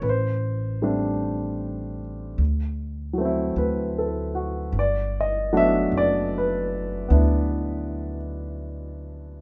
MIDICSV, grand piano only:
0, 0, Header, 1, 2, 480
1, 0, Start_track
1, 0, Key_signature, 1, "major"
1, 0, Tempo, 1181102
1, 13, Time_signature, 4, 2, 24, 8
1, 3825, End_track
2, 0, Start_track
2, 0, Title_t, "Grand piano"
2, 0, Program_c, 0, 0
2, 0, Control_c, 0, 64, 127
2, 12, Note_on_c, 0, 71, 47
2, 18, Control_c, 0, 64, 0
2, 37, Note_on_c, 0, 72, 65
2, 43, Note_off_c, 0, 71, 0
2, 99, Control_c, 0, 64, 127
2, 333, Note_on_c, 0, 55, 45
2, 335, Note_on_c, 0, 57, 40
2, 340, Note_on_c, 0, 60, 43
2, 340, Note_on_c, 0, 62, 53
2, 809, Note_off_c, 0, 72, 0
2, 973, Note_off_c, 0, 55, 0
2, 974, Note_off_c, 0, 57, 0
2, 976, Note_off_c, 0, 60, 0
2, 977, Note_off_c, 0, 62, 0
2, 979, Control_c, 0, 64, 0
2, 1048, Control_c, 0, 64, 127
2, 1273, Note_on_c, 0, 54, 49
2, 1292, Note_on_c, 0, 57, 47
2, 1303, Note_on_c, 0, 60, 46
2, 1321, Note_on_c, 0, 64, 55
2, 1456, Note_on_c, 0, 71, 42
2, 1619, Note_on_c, 0, 69, 44
2, 1758, Note_off_c, 0, 71, 0
2, 1767, Note_on_c, 0, 66, 45
2, 1866, Note_off_c, 0, 69, 0
2, 1923, Note_off_c, 0, 54, 0
2, 1932, Note_off_c, 0, 57, 0
2, 1938, Note_off_c, 0, 60, 0
2, 1938, Control_c, 0, 64, 0
2, 1947, Note_off_c, 0, 64, 0
2, 1947, Note_on_c, 0, 74, 64
2, 2001, Control_c, 0, 64, 127
2, 2020, Note_off_c, 0, 66, 0
2, 2095, Note_off_c, 0, 74, 0
2, 2116, Note_on_c, 0, 75, 61
2, 2246, Note_on_c, 0, 54, 54
2, 2247, Note_on_c, 0, 57, 49
2, 2247, Note_on_c, 0, 59, 51
2, 2251, Note_on_c, 0, 62, 57
2, 2259, Note_off_c, 0, 75, 0
2, 2264, Note_on_c, 0, 76, 86
2, 2414, Note_off_c, 0, 76, 0
2, 2428, Note_on_c, 0, 74, 77
2, 2576, Note_off_c, 0, 74, 0
2, 2593, Note_on_c, 0, 71, 58
2, 2874, Note_off_c, 0, 59, 0
2, 2880, Note_on_c, 0, 59, 44
2, 2882, Note_off_c, 0, 62, 0
2, 2888, Note_on_c, 0, 62, 43
2, 2893, Note_on_c, 0, 64, 45
2, 3312, Note_off_c, 0, 71, 0
2, 3825, Note_off_c, 0, 54, 0
2, 3825, Note_off_c, 0, 57, 0
2, 3825, Note_off_c, 0, 59, 0
2, 3825, Note_off_c, 0, 62, 0
2, 3825, Note_off_c, 0, 64, 0
2, 3825, End_track
0, 0, End_of_file